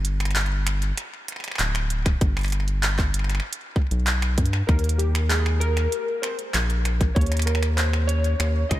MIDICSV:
0, 0, Header, 1, 4, 480
1, 0, Start_track
1, 0, Tempo, 618557
1, 1718, Time_signature, 4, 2, 24, 8
1, 6826, End_track
2, 0, Start_track
2, 0, Title_t, "Synth keys"
2, 0, Program_c, 0, 88
2, 3625, Note_on_c, 0, 70, 91
2, 3867, Note_on_c, 0, 67, 80
2, 3879, Note_off_c, 0, 70, 0
2, 3975, Note_off_c, 0, 67, 0
2, 4106, Note_on_c, 0, 68, 85
2, 4347, Note_on_c, 0, 70, 100
2, 4359, Note_off_c, 0, 68, 0
2, 4827, Note_on_c, 0, 72, 89
2, 4847, Note_off_c, 0, 70, 0
2, 4935, Note_off_c, 0, 72, 0
2, 5547, Note_on_c, 0, 73, 93
2, 5786, Note_on_c, 0, 70, 79
2, 5800, Note_off_c, 0, 73, 0
2, 6026, Note_on_c, 0, 72, 87
2, 6040, Note_off_c, 0, 70, 0
2, 6266, Note_on_c, 0, 73, 100
2, 6280, Note_off_c, 0, 72, 0
2, 6721, Note_off_c, 0, 73, 0
2, 6746, Note_on_c, 0, 75, 91
2, 6826, Note_off_c, 0, 75, 0
2, 6826, End_track
3, 0, Start_track
3, 0, Title_t, "Analog synth bass"
3, 0, Program_c, 1, 38
3, 0, Note_on_c, 1, 31, 103
3, 718, Note_off_c, 1, 31, 0
3, 1237, Note_on_c, 1, 26, 91
3, 1677, Note_off_c, 1, 26, 0
3, 1717, Note_on_c, 1, 31, 98
3, 2638, Note_off_c, 1, 31, 0
3, 3037, Note_on_c, 1, 35, 80
3, 3397, Note_on_c, 1, 43, 97
3, 3409, Note_off_c, 1, 35, 0
3, 3588, Note_off_c, 1, 43, 0
3, 3637, Note_on_c, 1, 39, 100
3, 4558, Note_off_c, 1, 39, 0
3, 5078, Note_on_c, 1, 34, 89
3, 5518, Note_off_c, 1, 34, 0
3, 5558, Note_on_c, 1, 39, 99
3, 6478, Note_off_c, 1, 39, 0
3, 6518, Note_on_c, 1, 39, 90
3, 6708, Note_off_c, 1, 39, 0
3, 6759, Note_on_c, 1, 37, 94
3, 6826, Note_off_c, 1, 37, 0
3, 6826, End_track
4, 0, Start_track
4, 0, Title_t, "Drums"
4, 37, Note_on_c, 9, 42, 74
4, 114, Note_off_c, 9, 42, 0
4, 157, Note_on_c, 9, 26, 47
4, 157, Note_on_c, 9, 42, 50
4, 197, Note_off_c, 9, 26, 0
4, 197, Note_off_c, 9, 42, 0
4, 197, Note_on_c, 9, 26, 39
4, 197, Note_on_c, 9, 42, 42
4, 237, Note_off_c, 9, 26, 0
4, 237, Note_off_c, 9, 42, 0
4, 237, Note_on_c, 9, 26, 33
4, 237, Note_on_c, 9, 42, 34
4, 277, Note_off_c, 9, 26, 0
4, 277, Note_off_c, 9, 42, 0
4, 277, Note_on_c, 9, 26, 26
4, 277, Note_on_c, 9, 39, 120
4, 277, Note_on_c, 9, 42, 80
4, 317, Note_off_c, 9, 42, 0
4, 317, Note_on_c, 9, 42, 23
4, 354, Note_off_c, 9, 26, 0
4, 354, Note_off_c, 9, 39, 0
4, 357, Note_off_c, 9, 42, 0
4, 357, Note_on_c, 9, 26, 18
4, 357, Note_on_c, 9, 42, 19
4, 435, Note_off_c, 9, 26, 0
4, 435, Note_off_c, 9, 42, 0
4, 517, Note_on_c, 9, 26, 80
4, 517, Note_on_c, 9, 42, 82
4, 594, Note_off_c, 9, 26, 0
4, 594, Note_off_c, 9, 42, 0
4, 636, Note_on_c, 9, 42, 53
4, 714, Note_off_c, 9, 42, 0
4, 756, Note_on_c, 9, 26, 49
4, 756, Note_on_c, 9, 42, 82
4, 834, Note_off_c, 9, 26, 0
4, 834, Note_off_c, 9, 42, 0
4, 996, Note_on_c, 9, 26, 22
4, 996, Note_on_c, 9, 42, 79
4, 1026, Note_off_c, 9, 26, 0
4, 1026, Note_on_c, 9, 26, 25
4, 1057, Note_off_c, 9, 26, 0
4, 1057, Note_on_c, 9, 26, 29
4, 1074, Note_off_c, 9, 42, 0
4, 1087, Note_off_c, 9, 26, 0
4, 1087, Note_on_c, 9, 26, 29
4, 1117, Note_off_c, 9, 26, 0
4, 1117, Note_on_c, 9, 26, 32
4, 1117, Note_on_c, 9, 42, 54
4, 1146, Note_off_c, 9, 26, 0
4, 1146, Note_on_c, 9, 26, 35
4, 1176, Note_off_c, 9, 26, 0
4, 1176, Note_on_c, 9, 26, 40
4, 1194, Note_off_c, 9, 42, 0
4, 1207, Note_off_c, 9, 26, 0
4, 1207, Note_on_c, 9, 26, 41
4, 1236, Note_on_c, 9, 39, 123
4, 1236, Note_on_c, 9, 42, 82
4, 1284, Note_off_c, 9, 26, 0
4, 1314, Note_off_c, 9, 39, 0
4, 1314, Note_off_c, 9, 42, 0
4, 1357, Note_on_c, 9, 26, 72
4, 1357, Note_on_c, 9, 42, 36
4, 1434, Note_off_c, 9, 26, 0
4, 1434, Note_off_c, 9, 42, 0
4, 1477, Note_on_c, 9, 42, 82
4, 1554, Note_off_c, 9, 42, 0
4, 1597, Note_on_c, 9, 26, 51
4, 1597, Note_on_c, 9, 36, 101
4, 1597, Note_on_c, 9, 42, 53
4, 1675, Note_off_c, 9, 26, 0
4, 1675, Note_off_c, 9, 36, 0
4, 1675, Note_off_c, 9, 42, 0
4, 1717, Note_on_c, 9, 36, 111
4, 1717, Note_on_c, 9, 42, 78
4, 1794, Note_off_c, 9, 42, 0
4, 1795, Note_off_c, 9, 36, 0
4, 1837, Note_on_c, 9, 26, 48
4, 1837, Note_on_c, 9, 42, 16
4, 1855, Note_off_c, 9, 42, 0
4, 1855, Note_on_c, 9, 42, 19
4, 1871, Note_off_c, 9, 42, 0
4, 1871, Note_on_c, 9, 42, 20
4, 1889, Note_off_c, 9, 42, 0
4, 1889, Note_on_c, 9, 42, 24
4, 1897, Note_off_c, 9, 26, 0
4, 1897, Note_on_c, 9, 26, 40
4, 1907, Note_off_c, 9, 42, 0
4, 1907, Note_on_c, 9, 42, 27
4, 1924, Note_off_c, 9, 42, 0
4, 1924, Note_on_c, 9, 42, 29
4, 1940, Note_off_c, 9, 42, 0
4, 1940, Note_on_c, 9, 42, 30
4, 1958, Note_off_c, 9, 26, 0
4, 1958, Note_off_c, 9, 42, 0
4, 1958, Note_on_c, 9, 26, 28
4, 1958, Note_on_c, 9, 42, 71
4, 2017, Note_off_c, 9, 26, 0
4, 2017, Note_on_c, 9, 26, 24
4, 2036, Note_off_c, 9, 42, 0
4, 2078, Note_on_c, 9, 42, 49
4, 2095, Note_off_c, 9, 26, 0
4, 2155, Note_off_c, 9, 42, 0
4, 2197, Note_on_c, 9, 39, 124
4, 2197, Note_on_c, 9, 42, 76
4, 2275, Note_off_c, 9, 39, 0
4, 2275, Note_off_c, 9, 42, 0
4, 2317, Note_on_c, 9, 36, 82
4, 2317, Note_on_c, 9, 39, 62
4, 2395, Note_off_c, 9, 36, 0
4, 2395, Note_off_c, 9, 39, 0
4, 2437, Note_on_c, 9, 42, 80
4, 2478, Note_on_c, 9, 26, 27
4, 2515, Note_off_c, 9, 42, 0
4, 2517, Note_off_c, 9, 26, 0
4, 2517, Note_on_c, 9, 26, 31
4, 2557, Note_off_c, 9, 26, 0
4, 2557, Note_on_c, 9, 26, 34
4, 2557, Note_on_c, 9, 42, 52
4, 2597, Note_off_c, 9, 26, 0
4, 2597, Note_on_c, 9, 26, 39
4, 2635, Note_off_c, 9, 42, 0
4, 2637, Note_off_c, 9, 26, 0
4, 2637, Note_on_c, 9, 26, 41
4, 2714, Note_off_c, 9, 26, 0
4, 2736, Note_on_c, 9, 42, 77
4, 2814, Note_off_c, 9, 42, 0
4, 2917, Note_on_c, 9, 36, 85
4, 2995, Note_off_c, 9, 36, 0
4, 3036, Note_on_c, 9, 42, 50
4, 3114, Note_off_c, 9, 42, 0
4, 3157, Note_on_c, 9, 39, 122
4, 3157, Note_on_c, 9, 42, 75
4, 3235, Note_off_c, 9, 39, 0
4, 3235, Note_off_c, 9, 42, 0
4, 3277, Note_on_c, 9, 26, 51
4, 3277, Note_on_c, 9, 42, 35
4, 3355, Note_off_c, 9, 26, 0
4, 3355, Note_off_c, 9, 42, 0
4, 3396, Note_on_c, 9, 42, 76
4, 3397, Note_on_c, 9, 36, 85
4, 3458, Note_off_c, 9, 42, 0
4, 3458, Note_on_c, 9, 42, 52
4, 3475, Note_off_c, 9, 36, 0
4, 3517, Note_on_c, 9, 26, 50
4, 3535, Note_off_c, 9, 42, 0
4, 3595, Note_off_c, 9, 26, 0
4, 3637, Note_on_c, 9, 26, 48
4, 3637, Note_on_c, 9, 36, 106
4, 3637, Note_on_c, 9, 42, 33
4, 3715, Note_off_c, 9, 26, 0
4, 3715, Note_off_c, 9, 36, 0
4, 3715, Note_off_c, 9, 42, 0
4, 3717, Note_on_c, 9, 42, 46
4, 3757, Note_off_c, 9, 42, 0
4, 3757, Note_on_c, 9, 42, 35
4, 3797, Note_off_c, 9, 42, 0
4, 3797, Note_on_c, 9, 42, 58
4, 3874, Note_off_c, 9, 42, 0
4, 3876, Note_on_c, 9, 42, 71
4, 3953, Note_off_c, 9, 42, 0
4, 3996, Note_on_c, 9, 26, 72
4, 3996, Note_on_c, 9, 42, 49
4, 4074, Note_off_c, 9, 26, 0
4, 4074, Note_off_c, 9, 42, 0
4, 4116, Note_on_c, 9, 39, 117
4, 4116, Note_on_c, 9, 42, 75
4, 4194, Note_off_c, 9, 39, 0
4, 4194, Note_off_c, 9, 42, 0
4, 4237, Note_on_c, 9, 26, 49
4, 4314, Note_off_c, 9, 26, 0
4, 4356, Note_on_c, 9, 42, 81
4, 4434, Note_off_c, 9, 42, 0
4, 4476, Note_on_c, 9, 26, 52
4, 4476, Note_on_c, 9, 42, 48
4, 4554, Note_off_c, 9, 26, 0
4, 4554, Note_off_c, 9, 42, 0
4, 4596, Note_on_c, 9, 42, 78
4, 4674, Note_off_c, 9, 42, 0
4, 4836, Note_on_c, 9, 26, 76
4, 4836, Note_on_c, 9, 42, 72
4, 4914, Note_off_c, 9, 26, 0
4, 4914, Note_off_c, 9, 42, 0
4, 4957, Note_on_c, 9, 42, 48
4, 5034, Note_off_c, 9, 42, 0
4, 5078, Note_on_c, 9, 26, 51
4, 5078, Note_on_c, 9, 39, 120
4, 5078, Note_on_c, 9, 42, 75
4, 5155, Note_off_c, 9, 26, 0
4, 5155, Note_off_c, 9, 39, 0
4, 5155, Note_off_c, 9, 42, 0
4, 5198, Note_on_c, 9, 42, 35
4, 5275, Note_off_c, 9, 42, 0
4, 5317, Note_on_c, 9, 26, 52
4, 5317, Note_on_c, 9, 42, 78
4, 5395, Note_off_c, 9, 26, 0
4, 5395, Note_off_c, 9, 42, 0
4, 5438, Note_on_c, 9, 36, 94
4, 5438, Note_on_c, 9, 42, 51
4, 5515, Note_off_c, 9, 36, 0
4, 5515, Note_off_c, 9, 42, 0
4, 5557, Note_on_c, 9, 42, 34
4, 5558, Note_on_c, 9, 36, 104
4, 5598, Note_off_c, 9, 42, 0
4, 5598, Note_on_c, 9, 42, 41
4, 5635, Note_off_c, 9, 36, 0
4, 5638, Note_off_c, 9, 42, 0
4, 5638, Note_on_c, 9, 42, 45
4, 5678, Note_off_c, 9, 42, 0
4, 5678, Note_on_c, 9, 26, 35
4, 5678, Note_on_c, 9, 42, 55
4, 5717, Note_off_c, 9, 42, 0
4, 5717, Note_on_c, 9, 42, 58
4, 5738, Note_off_c, 9, 26, 0
4, 5738, Note_on_c, 9, 26, 44
4, 5757, Note_off_c, 9, 42, 0
4, 5757, Note_on_c, 9, 42, 62
4, 5798, Note_off_c, 9, 26, 0
4, 5798, Note_off_c, 9, 42, 0
4, 5798, Note_on_c, 9, 26, 51
4, 5798, Note_on_c, 9, 42, 68
4, 5858, Note_off_c, 9, 26, 0
4, 5858, Note_on_c, 9, 26, 57
4, 5875, Note_off_c, 9, 42, 0
4, 5917, Note_off_c, 9, 26, 0
4, 5917, Note_on_c, 9, 26, 53
4, 5917, Note_on_c, 9, 42, 50
4, 5995, Note_off_c, 9, 26, 0
4, 5995, Note_off_c, 9, 42, 0
4, 6037, Note_on_c, 9, 39, 111
4, 6037, Note_on_c, 9, 42, 73
4, 6115, Note_off_c, 9, 39, 0
4, 6115, Note_off_c, 9, 42, 0
4, 6157, Note_on_c, 9, 26, 51
4, 6235, Note_off_c, 9, 26, 0
4, 6277, Note_on_c, 9, 42, 82
4, 6355, Note_off_c, 9, 42, 0
4, 6397, Note_on_c, 9, 42, 50
4, 6475, Note_off_c, 9, 42, 0
4, 6517, Note_on_c, 9, 26, 79
4, 6517, Note_on_c, 9, 42, 73
4, 6595, Note_off_c, 9, 26, 0
4, 6595, Note_off_c, 9, 42, 0
4, 6758, Note_on_c, 9, 26, 49
4, 6758, Note_on_c, 9, 36, 83
4, 6758, Note_on_c, 9, 42, 73
4, 6826, Note_off_c, 9, 26, 0
4, 6826, Note_off_c, 9, 36, 0
4, 6826, Note_off_c, 9, 42, 0
4, 6826, End_track
0, 0, End_of_file